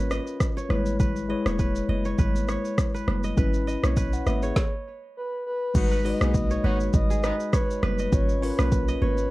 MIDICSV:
0, 0, Header, 1, 7, 480
1, 0, Start_track
1, 0, Key_signature, 5, "minor"
1, 0, Tempo, 594059
1, 806, Time_signature, 4, 2, 24, 8
1, 7519, End_track
2, 0, Start_track
2, 0, Title_t, "Kora"
2, 0, Program_c, 0, 46
2, 0, Note_on_c, 0, 71, 78
2, 0, Note_on_c, 0, 73, 78
2, 0, Note_on_c, 0, 75, 78
2, 84, Note_off_c, 0, 75, 0
2, 87, Note_on_c, 0, 75, 75
2, 456, Note_off_c, 0, 73, 0
2, 459, Note_on_c, 0, 73, 77
2, 565, Note_off_c, 0, 71, 0
2, 568, Note_on_c, 0, 71, 79
2, 804, Note_off_c, 0, 71, 0
2, 807, Note_on_c, 0, 71, 72
2, 952, Note_off_c, 0, 75, 0
2, 1047, Note_on_c, 0, 75, 77
2, 1176, Note_off_c, 0, 73, 0
2, 1180, Note_on_c, 0, 73, 85
2, 1284, Note_off_c, 0, 71, 0
2, 1287, Note_on_c, 0, 71, 76
2, 1524, Note_off_c, 0, 75, 0
2, 1527, Note_on_c, 0, 75, 77
2, 1656, Note_off_c, 0, 73, 0
2, 1659, Note_on_c, 0, 73, 89
2, 1764, Note_off_c, 0, 71, 0
2, 1767, Note_on_c, 0, 71, 78
2, 2004, Note_off_c, 0, 73, 0
2, 2007, Note_on_c, 0, 73, 81
2, 2376, Note_off_c, 0, 71, 0
2, 2379, Note_on_c, 0, 71, 71
2, 2392, Note_off_c, 0, 75, 0
2, 2618, Note_on_c, 0, 75, 75
2, 2724, Note_off_c, 0, 71, 0
2, 2727, Note_on_c, 0, 71, 83
2, 2934, Note_off_c, 0, 73, 0
2, 2963, Note_off_c, 0, 75, 0
2, 2967, Note_on_c, 0, 75, 79
2, 3099, Note_on_c, 0, 73, 76
2, 3203, Note_off_c, 0, 71, 0
2, 3207, Note_on_c, 0, 71, 84
2, 3443, Note_off_c, 0, 75, 0
2, 3446, Note_on_c, 0, 75, 73
2, 3575, Note_off_c, 0, 73, 0
2, 3578, Note_on_c, 0, 73, 80
2, 4200, Note_off_c, 0, 71, 0
2, 4311, Note_off_c, 0, 75, 0
2, 4505, Note_off_c, 0, 73, 0
2, 4778, Note_on_c, 0, 71, 75
2, 4886, Note_on_c, 0, 75, 71
2, 5258, Note_on_c, 0, 73, 77
2, 5363, Note_off_c, 0, 71, 0
2, 5366, Note_on_c, 0, 71, 74
2, 5738, Note_on_c, 0, 68, 83
2, 5751, Note_off_c, 0, 75, 0
2, 5843, Note_off_c, 0, 71, 0
2, 5846, Note_on_c, 0, 71, 80
2, 6083, Note_off_c, 0, 73, 0
2, 6086, Note_on_c, 0, 73, 76
2, 6323, Note_off_c, 0, 71, 0
2, 6326, Note_on_c, 0, 71, 91
2, 6458, Note_on_c, 0, 75, 79
2, 6802, Note_off_c, 0, 73, 0
2, 6806, Note_on_c, 0, 73, 73
2, 6840, Note_off_c, 0, 68, 0
2, 6934, Note_off_c, 0, 71, 0
2, 6937, Note_on_c, 0, 71, 73
2, 7174, Note_off_c, 0, 75, 0
2, 7178, Note_on_c, 0, 75, 80
2, 7282, Note_off_c, 0, 73, 0
2, 7285, Note_on_c, 0, 73, 78
2, 7519, Note_off_c, 0, 71, 0
2, 7519, Note_off_c, 0, 73, 0
2, 7519, Note_off_c, 0, 75, 0
2, 7519, End_track
3, 0, Start_track
3, 0, Title_t, "Soft synth lead"
3, 0, Program_c, 1, 80
3, 4177, Note_on_c, 1, 71, 93
3, 4395, Note_off_c, 1, 71, 0
3, 4416, Note_on_c, 1, 71, 99
3, 4896, Note_on_c, 1, 75, 117
3, 4908, Note_off_c, 1, 71, 0
3, 5377, Note_on_c, 1, 73, 100
3, 5389, Note_off_c, 1, 75, 0
3, 5611, Note_off_c, 1, 73, 0
3, 5616, Note_on_c, 1, 75, 106
3, 6059, Note_off_c, 1, 75, 0
3, 6096, Note_on_c, 1, 71, 99
3, 6315, Note_off_c, 1, 71, 0
3, 6337, Note_on_c, 1, 71, 98
3, 6577, Note_on_c, 1, 73, 99
3, 6589, Note_off_c, 1, 71, 0
3, 6817, Note_on_c, 1, 71, 109
3, 6829, Note_off_c, 1, 73, 0
3, 7292, Note_off_c, 1, 71, 0
3, 7296, Note_on_c, 1, 71, 102
3, 7519, Note_off_c, 1, 71, 0
3, 7519, End_track
4, 0, Start_track
4, 0, Title_t, "Tine electric piano"
4, 0, Program_c, 2, 4
4, 0, Control_c, 2, 64, 127
4, 0, Note_on_c, 2, 61, 84
4, 0, Note_on_c, 2, 65, 78
4, 0, Note_on_c, 2, 70, 75
4, 0, Note_on_c, 2, 71, 97
4, 557, Note_on_c, 2, 56, 88
4, 563, Note_on_c, 2, 64, 81
4, 570, Note_off_c, 2, 71, 0
4, 570, Note_on_c, 2, 71, 81
4, 575, Note_off_c, 2, 61, 0
4, 575, Control_c, 2, 64, 0
4, 577, Note_on_c, 2, 73, 95
4, 579, Note_off_c, 2, 70, 0
4, 580, Note_off_c, 2, 65, 0
4, 722, Control_c, 2, 64, 127
4, 955, Note_off_c, 2, 56, 0
4, 958, Note_off_c, 2, 64, 0
4, 962, Note_off_c, 2, 71, 0
4, 965, Note_off_c, 2, 73, 0
4, 1037, Note_on_c, 2, 56, 86
4, 1044, Note_on_c, 2, 64, 79
4, 1050, Note_on_c, 2, 71, 79
4, 1057, Note_on_c, 2, 73, 91
4, 1800, Note_off_c, 2, 56, 0
4, 1804, Note_off_c, 2, 64, 0
4, 1807, Note_off_c, 2, 71, 0
4, 1810, Note_off_c, 2, 73, 0
4, 2717, Note_on_c, 2, 61, 84
4, 2727, Note_on_c, 2, 64, 76
4, 2735, Control_c, 2, 64, 0
4, 2737, Note_on_c, 2, 71, 91
4, 2891, Control_c, 2, 64, 127
4, 2915, Note_off_c, 2, 61, 0
4, 2920, Note_off_c, 2, 64, 0
4, 2926, Note_off_c, 2, 71, 0
4, 3339, Note_on_c, 2, 78, 65
4, 3344, Note_on_c, 2, 73, 58
4, 3441, Note_off_c, 2, 78, 0
4, 3444, Note_off_c, 2, 73, 0
4, 3447, Note_on_c, 2, 76, 71
4, 3452, Note_on_c, 2, 71, 62
4, 3572, Note_off_c, 2, 76, 0
4, 3574, Note_off_c, 2, 71, 0
4, 3578, Note_on_c, 2, 73, 65
4, 3583, Note_on_c, 2, 68, 55
4, 3696, Control_c, 2, 64, 0
4, 3806, Note_off_c, 2, 73, 0
4, 3809, Note_off_c, 2, 68, 0
4, 4637, Note_on_c, 2, 56, 75
4, 4643, Note_on_c, 2, 63, 67
4, 4650, Note_on_c, 2, 66, 68
4, 4657, Note_on_c, 2, 71, 82
4, 4785, Control_c, 2, 64, 127
4, 4835, Note_off_c, 2, 56, 0
4, 4839, Note_off_c, 2, 63, 0
4, 4842, Note_off_c, 2, 66, 0
4, 4845, Note_off_c, 2, 71, 0
4, 4876, Note_on_c, 2, 56, 76
4, 4883, Note_on_c, 2, 63, 69
4, 4890, Note_on_c, 2, 66, 68
4, 4897, Note_on_c, 2, 71, 86
4, 5640, Note_off_c, 2, 56, 0
4, 5643, Note_off_c, 2, 63, 0
4, 5647, Note_off_c, 2, 66, 0
4, 5650, Note_off_c, 2, 71, 0
4, 6557, Note_on_c, 2, 61, 75
4, 6567, Note_on_c, 2, 65, 69
4, 6577, Control_c, 2, 64, 0
4, 6577, Note_on_c, 2, 71, 86
4, 6714, Control_c, 2, 64, 127
4, 6755, Note_off_c, 2, 61, 0
4, 6760, Note_off_c, 2, 65, 0
4, 6765, Note_off_c, 2, 71, 0
4, 6796, Note_on_c, 2, 61, 79
4, 6806, Note_on_c, 2, 65, 70
4, 6817, Note_on_c, 2, 70, 67
4, 6869, Note_off_c, 2, 70, 0
4, 6869, Note_on_c, 2, 71, 86
4, 7519, Note_off_c, 2, 61, 0
4, 7519, Note_off_c, 2, 65, 0
4, 7519, Note_off_c, 2, 71, 0
4, 7519, End_track
5, 0, Start_track
5, 0, Title_t, "Horn section"
5, 0, Program_c, 3, 61
5, 4646, Note_on_c, 3, 54, 107
5, 4646, Note_on_c, 3, 59, 104
5, 4646, Note_on_c, 3, 63, 106
5, 4646, Note_on_c, 3, 66, 116
5, 4838, Note_off_c, 3, 54, 0
5, 4838, Note_off_c, 3, 59, 0
5, 4838, Note_off_c, 3, 63, 0
5, 4838, Note_off_c, 3, 66, 0
5, 5017, Note_on_c, 3, 63, 70
5, 5018, Note_on_c, 3, 56, 74
5, 5018, Note_on_c, 3, 59, 74
5, 5018, Note_on_c, 3, 68, 81
5, 5104, Note_off_c, 3, 59, 0
5, 5104, Note_off_c, 3, 63, 0
5, 5105, Note_off_c, 3, 56, 0
5, 5105, Note_off_c, 3, 68, 0
5, 5366, Note_on_c, 3, 54, 95
5, 5366, Note_on_c, 3, 59, 92
5, 5366, Note_on_c, 3, 63, 93
5, 5366, Note_on_c, 3, 66, 103
5, 5472, Note_off_c, 3, 54, 0
5, 5472, Note_off_c, 3, 59, 0
5, 5472, Note_off_c, 3, 63, 0
5, 5472, Note_off_c, 3, 66, 0
5, 5845, Note_on_c, 3, 56, 83
5, 5845, Note_on_c, 3, 59, 83
5, 5846, Note_on_c, 3, 51, 87
5, 5846, Note_on_c, 3, 63, 94
5, 5925, Note_off_c, 3, 51, 0
5, 5925, Note_off_c, 3, 56, 0
5, 5925, Note_off_c, 3, 59, 0
5, 5925, Note_off_c, 3, 63, 0
5, 7519, End_track
6, 0, Start_track
6, 0, Title_t, "808-style bass"
6, 0, Program_c, 4, 38
6, 0, Note_on_c, 4, 32, 98
6, 159, Note_off_c, 4, 32, 0
6, 566, Note_on_c, 4, 32, 102
6, 1082, Note_off_c, 4, 32, 0
6, 1178, Note_on_c, 4, 28, 93
6, 1472, Note_off_c, 4, 28, 0
6, 1526, Note_on_c, 4, 30, 92
6, 1728, Note_off_c, 4, 30, 0
6, 1766, Note_on_c, 4, 32, 96
6, 2080, Note_off_c, 4, 32, 0
6, 2487, Note_on_c, 4, 30, 93
6, 2689, Note_off_c, 4, 30, 0
6, 2727, Note_on_c, 4, 32, 99
6, 3040, Note_off_c, 4, 32, 0
6, 3098, Note_on_c, 4, 35, 92
6, 3392, Note_off_c, 4, 35, 0
6, 3447, Note_on_c, 4, 32, 88
6, 3649, Note_off_c, 4, 32, 0
6, 4646, Note_on_c, 4, 32, 109
6, 4959, Note_off_c, 4, 32, 0
6, 5017, Note_on_c, 4, 35, 91
6, 5311, Note_off_c, 4, 35, 0
6, 5366, Note_on_c, 4, 32, 98
6, 5568, Note_off_c, 4, 32, 0
6, 5606, Note_on_c, 4, 32, 105
6, 5919, Note_off_c, 4, 32, 0
6, 6326, Note_on_c, 4, 30, 92
6, 6529, Note_off_c, 4, 30, 0
6, 6566, Note_on_c, 4, 32, 107
6, 6879, Note_off_c, 4, 32, 0
6, 6939, Note_on_c, 4, 35, 86
6, 7232, Note_off_c, 4, 35, 0
6, 7287, Note_on_c, 4, 32, 94
6, 7489, Note_off_c, 4, 32, 0
6, 7519, End_track
7, 0, Start_track
7, 0, Title_t, "Drums"
7, 86, Note_on_c, 9, 82, 53
7, 88, Note_on_c, 9, 37, 93
7, 167, Note_off_c, 9, 82, 0
7, 169, Note_off_c, 9, 37, 0
7, 219, Note_on_c, 9, 82, 52
7, 299, Note_off_c, 9, 82, 0
7, 326, Note_on_c, 9, 36, 88
7, 326, Note_on_c, 9, 37, 99
7, 328, Note_on_c, 9, 82, 80
7, 406, Note_off_c, 9, 37, 0
7, 407, Note_off_c, 9, 36, 0
7, 409, Note_off_c, 9, 82, 0
7, 467, Note_on_c, 9, 82, 49
7, 548, Note_off_c, 9, 82, 0
7, 567, Note_on_c, 9, 37, 93
7, 568, Note_on_c, 9, 63, 83
7, 568, Note_on_c, 9, 64, 85
7, 647, Note_off_c, 9, 37, 0
7, 649, Note_off_c, 9, 63, 0
7, 649, Note_off_c, 9, 64, 0
7, 693, Note_on_c, 9, 82, 61
7, 773, Note_off_c, 9, 82, 0
7, 805, Note_on_c, 9, 64, 75
7, 806, Note_on_c, 9, 36, 111
7, 806, Note_on_c, 9, 82, 76
7, 886, Note_off_c, 9, 64, 0
7, 886, Note_off_c, 9, 82, 0
7, 887, Note_off_c, 9, 36, 0
7, 937, Note_on_c, 9, 82, 47
7, 1018, Note_off_c, 9, 82, 0
7, 1179, Note_on_c, 9, 37, 114
7, 1182, Note_on_c, 9, 63, 80
7, 1183, Note_on_c, 9, 82, 51
7, 1260, Note_off_c, 9, 37, 0
7, 1263, Note_off_c, 9, 63, 0
7, 1264, Note_off_c, 9, 82, 0
7, 1284, Note_on_c, 9, 82, 79
7, 1285, Note_on_c, 9, 36, 90
7, 1365, Note_off_c, 9, 82, 0
7, 1366, Note_off_c, 9, 36, 0
7, 1418, Note_on_c, 9, 82, 62
7, 1499, Note_off_c, 9, 82, 0
7, 1527, Note_on_c, 9, 63, 76
7, 1608, Note_off_c, 9, 63, 0
7, 1656, Note_on_c, 9, 82, 44
7, 1736, Note_off_c, 9, 82, 0
7, 1763, Note_on_c, 9, 82, 69
7, 1766, Note_on_c, 9, 36, 97
7, 1767, Note_on_c, 9, 64, 73
7, 1844, Note_off_c, 9, 82, 0
7, 1847, Note_off_c, 9, 36, 0
7, 1847, Note_off_c, 9, 64, 0
7, 1899, Note_on_c, 9, 63, 56
7, 1904, Note_on_c, 9, 82, 60
7, 1979, Note_off_c, 9, 63, 0
7, 1985, Note_off_c, 9, 82, 0
7, 2007, Note_on_c, 9, 82, 56
7, 2009, Note_on_c, 9, 37, 91
7, 2088, Note_off_c, 9, 82, 0
7, 2089, Note_off_c, 9, 37, 0
7, 2140, Note_on_c, 9, 82, 53
7, 2220, Note_off_c, 9, 82, 0
7, 2246, Note_on_c, 9, 36, 94
7, 2246, Note_on_c, 9, 37, 100
7, 2248, Note_on_c, 9, 82, 81
7, 2327, Note_off_c, 9, 36, 0
7, 2327, Note_off_c, 9, 37, 0
7, 2329, Note_off_c, 9, 82, 0
7, 2387, Note_on_c, 9, 82, 48
7, 2468, Note_off_c, 9, 82, 0
7, 2487, Note_on_c, 9, 37, 98
7, 2487, Note_on_c, 9, 63, 86
7, 2487, Note_on_c, 9, 64, 84
7, 2568, Note_off_c, 9, 37, 0
7, 2568, Note_off_c, 9, 63, 0
7, 2568, Note_off_c, 9, 64, 0
7, 2613, Note_on_c, 9, 82, 58
7, 2694, Note_off_c, 9, 82, 0
7, 2724, Note_on_c, 9, 64, 76
7, 2727, Note_on_c, 9, 36, 114
7, 2727, Note_on_c, 9, 82, 75
7, 2805, Note_off_c, 9, 64, 0
7, 2807, Note_off_c, 9, 36, 0
7, 2807, Note_off_c, 9, 82, 0
7, 2858, Note_on_c, 9, 82, 46
7, 2939, Note_off_c, 9, 82, 0
7, 2975, Note_on_c, 9, 82, 59
7, 3056, Note_off_c, 9, 82, 0
7, 3099, Note_on_c, 9, 37, 118
7, 3101, Note_on_c, 9, 63, 81
7, 3103, Note_on_c, 9, 82, 50
7, 3180, Note_off_c, 9, 37, 0
7, 3182, Note_off_c, 9, 63, 0
7, 3184, Note_off_c, 9, 82, 0
7, 3204, Note_on_c, 9, 82, 86
7, 3205, Note_on_c, 9, 36, 95
7, 3285, Note_off_c, 9, 82, 0
7, 3286, Note_off_c, 9, 36, 0
7, 3337, Note_on_c, 9, 82, 61
7, 3418, Note_off_c, 9, 82, 0
7, 3446, Note_on_c, 9, 63, 75
7, 3447, Note_on_c, 9, 37, 86
7, 3447, Note_on_c, 9, 82, 55
7, 3527, Note_off_c, 9, 63, 0
7, 3528, Note_off_c, 9, 37, 0
7, 3528, Note_off_c, 9, 82, 0
7, 3575, Note_on_c, 9, 82, 46
7, 3655, Note_off_c, 9, 82, 0
7, 3686, Note_on_c, 9, 36, 108
7, 3686, Note_on_c, 9, 38, 91
7, 3767, Note_off_c, 9, 36, 0
7, 3767, Note_off_c, 9, 38, 0
7, 4643, Note_on_c, 9, 64, 78
7, 4645, Note_on_c, 9, 82, 82
7, 4646, Note_on_c, 9, 36, 121
7, 4646, Note_on_c, 9, 49, 103
7, 4724, Note_off_c, 9, 64, 0
7, 4726, Note_off_c, 9, 36, 0
7, 4726, Note_off_c, 9, 49, 0
7, 4726, Note_off_c, 9, 82, 0
7, 4777, Note_on_c, 9, 82, 47
7, 4858, Note_off_c, 9, 82, 0
7, 4894, Note_on_c, 9, 46, 65
7, 4975, Note_off_c, 9, 46, 0
7, 5019, Note_on_c, 9, 37, 118
7, 5020, Note_on_c, 9, 63, 86
7, 5023, Note_on_c, 9, 82, 52
7, 5100, Note_off_c, 9, 37, 0
7, 5101, Note_off_c, 9, 63, 0
7, 5104, Note_off_c, 9, 82, 0
7, 5124, Note_on_c, 9, 82, 84
7, 5125, Note_on_c, 9, 36, 95
7, 5205, Note_off_c, 9, 82, 0
7, 5206, Note_off_c, 9, 36, 0
7, 5258, Note_on_c, 9, 82, 61
7, 5338, Note_off_c, 9, 82, 0
7, 5366, Note_on_c, 9, 63, 76
7, 5447, Note_off_c, 9, 63, 0
7, 5495, Note_on_c, 9, 82, 47
7, 5576, Note_off_c, 9, 82, 0
7, 5602, Note_on_c, 9, 82, 74
7, 5606, Note_on_c, 9, 36, 104
7, 5606, Note_on_c, 9, 64, 78
7, 5683, Note_off_c, 9, 82, 0
7, 5686, Note_off_c, 9, 36, 0
7, 5687, Note_off_c, 9, 64, 0
7, 5743, Note_on_c, 9, 82, 60
7, 5824, Note_off_c, 9, 82, 0
7, 5846, Note_on_c, 9, 82, 58
7, 5847, Note_on_c, 9, 37, 95
7, 5927, Note_off_c, 9, 82, 0
7, 5928, Note_off_c, 9, 37, 0
7, 5979, Note_on_c, 9, 82, 55
7, 6059, Note_off_c, 9, 82, 0
7, 6085, Note_on_c, 9, 37, 104
7, 6086, Note_on_c, 9, 36, 96
7, 6087, Note_on_c, 9, 82, 86
7, 6166, Note_off_c, 9, 37, 0
7, 6167, Note_off_c, 9, 36, 0
7, 6168, Note_off_c, 9, 82, 0
7, 6226, Note_on_c, 9, 82, 52
7, 6307, Note_off_c, 9, 82, 0
7, 6326, Note_on_c, 9, 37, 98
7, 6327, Note_on_c, 9, 63, 88
7, 6327, Note_on_c, 9, 64, 89
7, 6406, Note_off_c, 9, 37, 0
7, 6408, Note_off_c, 9, 63, 0
7, 6408, Note_off_c, 9, 64, 0
7, 6452, Note_on_c, 9, 82, 65
7, 6533, Note_off_c, 9, 82, 0
7, 6565, Note_on_c, 9, 64, 76
7, 6565, Note_on_c, 9, 82, 79
7, 6566, Note_on_c, 9, 36, 113
7, 6646, Note_off_c, 9, 64, 0
7, 6646, Note_off_c, 9, 82, 0
7, 6647, Note_off_c, 9, 36, 0
7, 6697, Note_on_c, 9, 82, 50
7, 6778, Note_off_c, 9, 82, 0
7, 6814, Note_on_c, 9, 46, 64
7, 6895, Note_off_c, 9, 46, 0
7, 6938, Note_on_c, 9, 37, 123
7, 6941, Note_on_c, 9, 63, 85
7, 6942, Note_on_c, 9, 82, 53
7, 7019, Note_off_c, 9, 37, 0
7, 7022, Note_off_c, 9, 63, 0
7, 7023, Note_off_c, 9, 82, 0
7, 7044, Note_on_c, 9, 82, 87
7, 7045, Note_on_c, 9, 36, 97
7, 7125, Note_off_c, 9, 82, 0
7, 7126, Note_off_c, 9, 36, 0
7, 7178, Note_on_c, 9, 82, 64
7, 7258, Note_off_c, 9, 82, 0
7, 7286, Note_on_c, 9, 63, 75
7, 7367, Note_off_c, 9, 63, 0
7, 7415, Note_on_c, 9, 82, 45
7, 7495, Note_off_c, 9, 82, 0
7, 7519, End_track
0, 0, End_of_file